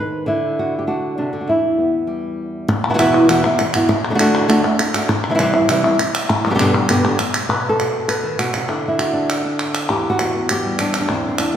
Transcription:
Already playing: D#3 D#4
0.00 B4
0.26 D3 E4
0.59 F#4
0.79 G4
0.87 D4 F#4
1.18 C3 D4
1.33 D3
1.41 F#4
1.48 E2 E4
1.78 B3
2.07 G3
2.69 muted nylon-string guitar stroke
2.90 B2 E3 B3 E4 F#4
2.94 B2 E3 B3 E4 F#4
2.98 E2 B2 E3 B3 E4 F#4, clap
3.14 clap
3.28 E2 B2 E3 B3 E4 F#4, clap
3.44 E3 B3 E4 F#4, clap
3.59 muted nylon-string guitar stroke, clap
3.74 E3 B3 E4 F#4, clap
3.89 muted nylon-string guitar stroke, clap
4.05 clap
4.10 D3 A3 D4 F#4
4.15 D3 A3 D4 F#4
4.19 D3 A3 D4 F#4, clap
4.35 clap
4.48 D3 A3 D4 F#4, clap
4.64 A3 D4 F#4, clap
4.78 muted nylon-string guitar stroke, clap
4.94 A3 D4 F#4, clap
5.09 muted nylon-string guitar stroke, clap
5.24 clap
5.29 E3 G3 C4 E4
5.35 E3 G3 C4 E4
5.39 C3 E3 G3 C4 E4, clap
5.54 G3 C4 E4, clap
5.68 C3 E3 G3 C4 E4, clap
5.84 G3 C4 E4, clap
5.99 muted nylon-string guitar stroke, clap
6.15 clap
6.29 muted nylon-string guitar stroke, clap
6.45 B2 D3 G3 B3 G4, clap
6.50 B2 D3 G3 B3 G4
6.55 B2 D3 G3 B3 G4
6.59 G2 B2 D3 G3 B3 G4, clap
6.74 D3 G3 B3 G4, clap
6.89 G2 B2 D3 G3 B3 G4, clap
7.04 D3 G3 B3 G4, clap
7.19 muted nylon-string guitar stroke, clap
7.34 clap
7.49 B2 B4, clap
7.69 A4
7.80 F#4, clap
8.08 B4, clap
8.23 D#3
8.39 B2 F#4, clap
8.54 C3 F#4, clap
8.68 D3 E4, clap
8.88 E4
8.99 F#4, clap
9.13 D4
9.30 clap
9.45 D4
9.59 clap
9.75 clap
9.89 E2 G4, clap
10.10 F#4
10.19 B3, clap
10.35 B3
10.49 G4, clap
10.64 G3
10.79 D4, clap
10.94 clap
11.00 D4
11.09 E2 C4, clap
11.29 C4
11.38 D4, clap

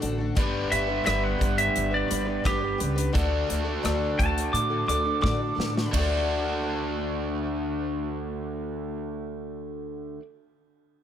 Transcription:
Already playing: D3 D4 F#4 A4
0.00 A1 A3 D4 F#4 A4, closed hi-hat
0.18 D4 F#4 A4
0.35 G1 G3 B3 D4 G4 B4, kick, closed hi-hat
0.70 G1 G3 D4 G4 B4 E5, closed hi-hat
0.87 D4 G4 B4
1.04 G1 G3 D4 G4 B4 E5, cross-stick, closed hi-hat
1.24 F#5
1.38 G1 G3 D4 G4 B4, kick, closed hi-hat
1.58 E5, closed hi-hat
1.76 G1, closed hi-hat
1.91 D4 G4 B4 D5
2.08 G1 G3 D4 G4 B4, closed hi-hat
2.25 D4 G4 B4
2.44 G1 G3 D4 G4 B4, kick, cross-stick, closed hi-hat
2.61 D4 G4 B4
2.78 C#2 G3 D4 G4 B4, closed hi-hat
2.96 D4 G4 B4, closed hi-hat
3.13 D2 D3 A3 D4 F#4 A4, kick, closed hi-hat
3.47 D2 A3 D4 F#4 A4, closed hi-hat
3.64 D4 F#4 A4
3.83 D2 D3 A3 D4 F#4 A4, cross-stick, closed hi-hat
4.18 D2 A3 D4 F#4 A4 A5, kick, closed hi-hat
4.38 closed hi-hat
4.53 A2 D6, closed hi-hat
4.70 D4 F#4 A4
4.87 D2 A3 D4 F#4 A4 D6, closed hi-hat
5.04 D4 F#4 A4
5.21 A2 D3 A3 D4 F#4 A4 D6, kick
5.25 snare
5.38 D4 F#4 A4
5.55 A2 A3 D4 F#4 A4
5.60 snare
5.73 D4 F#4 A4
5.78 snare
5.87 D3 A3
5.91 D2 D3 D4, kick, ride
5.96 F#4 A4

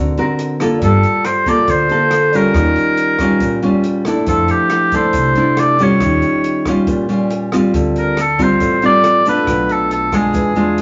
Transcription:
Already playing: D2 D3 C4 F#4 A#4
0.17 C4 F#4 A#4, closed hi-hat, shaker
0.39 closed hi-hat
0.60 A#3 F4 A4, cross-stick, closed hi-hat, shaker
0.81 G1 G3 A4, kick, closed hi-hat, shaker
1.03 closed hi-hat, shaker
1.25 C5, cross-stick, closed hi-hat, shaker
1.46 A#3 F4 A4 D5, kick, closed hi-hat, shaker
1.68 D2 D3 C5, kick, closed hi-hat, shaker
1.89 A#3 F4 A4, closed hi-hat, shaker
2.11 cross-stick, closed hi-hat, shaker
2.33 G3 C#4 F4 A#4, closed hi-hat, shaker
2.54 D#2 D#3, kick, cross-stick, closed hi-hat, shaker
2.76 closed hi-hat, shaker
2.97 closed hi-hat
3.19 G3 C#4 F4, kick, cross-stick, closed hi-hat, shaker
3.40 A#1 A#2, kick, closed hi-hat, shaker
3.62 G3 C#4 F4, closed hi-hat, shaker
3.84 closed hi-hat
4.05 A3 D4 E4, cross-stick, closed hi-hat, shaker
4.26 F2 F3 A4, kick, closed hi-hat, shaker
4.48 G4, closed hi-hat, shaker
4.70 cross-stick, closed hi-hat
4.92 A3 D4 E4 C5, kick, closed hi-hat, shaker
5.13 C2 C3, kick, closed hi-hat, shaker
5.35 A3 D4 E4, closed hi-hat, shaker
5.57 D5, cross-stick, closed hi-hat, shaker
5.79 G3 C#4 F4 C#5, closed hi-hat, shaker
6.00 D#2 D#3, kick, cross-stick, closed hi-hat, shaker
6.22 closed hi-hat, shaker
6.44 closed hi-hat
6.66 G3 C#4 F4, kick, cross-stick, closed hi-hat, shaker
6.87 A#1 A#2, kick, closed hi-hat, shaker
7.09 G3 C#4 F4, closed hi-hat, shaker
7.30 closed hi-hat
7.52 G3 C4 F4, cross-stick, closed hi-hat, shaker
7.73 D2 D3, kick, closed hi-hat, shaker
7.96 A#4, closed hi-hat, shaker
8.17 A4, cross-stick, closed hi-hat, shaker
8.39 G3 C4 F4, kick, closed hi-hat, shaker
8.43 C5
8.60 A1 A2, kick, closed hi-hat, shaker
8.82 G3 C4 F4 D5, closed hi-hat, shaker
9.04 cross-stick, closed hi-hat
9.25 A3 D4 F4 B4, closed hi-hat, shaker
9.47 B1 B2, kick, cross-stick, closed hi-hat, shaker
9.69 A4, closed hi-hat, shaker
9.91 A4, closed hi-hat
10.12 G#3 D4 F4 G#4, kick, cross-stick, closed hi-hat, shaker
10.33 E2 E3, kick, closed hi-hat, shaker
10.55 G#3 D4 F4, closed hi-hat, shaker
10.78 closed hi-hat

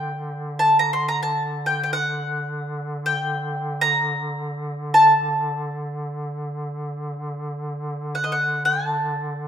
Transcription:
Already playing: D3 G5
0.59 A5
0.79 A#5
0.93 C6
1.08 A#5
1.23 A5
1.66 G5
1.84 G5
1.93 F#5
3.06 G5
3.81 A#5
4.94 A5
8.15 F#5
8.24 D#5
8.32 F#5
8.65 A5

